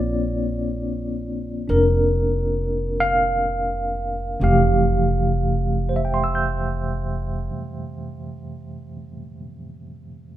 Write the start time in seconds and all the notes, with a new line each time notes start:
Already playing: A#1 A#3 C4 D4 F4 C#5 D5
1.68 F1 D4 A#4
3.00 F5
4.40 F1 F2 C3 E3 A3 G4 F5
5.89 C5
5.96 E5
6.05 G5
6.14 C6
6.24 E6
6.35 G6